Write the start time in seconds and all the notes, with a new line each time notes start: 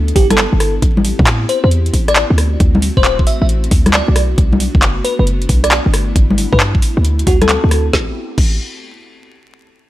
Already playing: D2 B3 D4 E4 A4
0.08 closed hi-hat
0.16 G1 G4, kick, open hi-hat
0.30 A4, cross-stick, closed hi-hat, high conga
0.38 clap, closed hi-hat
0.53 G1
0.60 cross-stick, open hi-hat
0.82 A1 C4 G4, kick, closed hi-hat
0.97 high conga
1.05 open hi-hat
1.19 A2, kick
1.27 clap, closed hi-hat
1.49 C5, open hi-hat
1.64 E2 C5
1.71 closed hi-hat
1.86 closed hi-hat
1.93 A1, kick, open hi-hat
2.08 D5, cross-stick, closed hi-hat
2.16 D5, clap, closed hi-hat
2.30 D2
2.38 A3 C4 F#4, cross-stick, open hi-hat
2.60 D2, kick, closed hi-hat
2.75 high conga
2.82 open hi-hat
2.97 D1 C5, kick
3.05 C5, clap, closed hi-hat
3.19 kick
3.27 E5, open hi-hat
3.42 A1 E5
3.49 closed hi-hat
3.64 closed hi-hat
3.71 D2, kick, open hi-hat
3.86 cross-stick, closed hi-hat, high conga
3.93 D5, clap, closed hi-hat
4.08 B1
4.16 A3 B3 D4, cross-stick, open hi-hat
4.38 B1, kick, closed hi-hat
4.53 high conga
4.60 open hi-hat
4.75 F#1, kick
4.82 clap, closed hi-hat
5.05 B4, open hi-hat
5.19 F#1 B4
5.27 closed hi-hat
5.42 closed hi-hat
5.49 B1, kick, open hi-hat
5.64 D5, cross-stick, closed hi-hat
5.71 D5, clap, closed hi-hat
5.86 G1
5.93 E4, cross-stick, open hi-hat
6.16 G1, kick, closed hi-hat
6.30 high conga
6.38 open hi-hat
6.53 G2 B4, kick
6.60 clap, closed hi-hat
6.75 kick
6.82 open hi-hat
6.97 D2
7.05 A3 C4 F#4, closed hi-hat
7.19 closed hi-hat
7.27 D2 F#4, kick, open hi-hat
7.42 A4, cross-stick, closed hi-hat, high conga
7.49 clap, closed hi-hat
7.64 D2
7.71 cross-stick, open hi-hat
7.93 A1 B3 C4 E4 G4, kick, snare
8.38 A1, kick, crash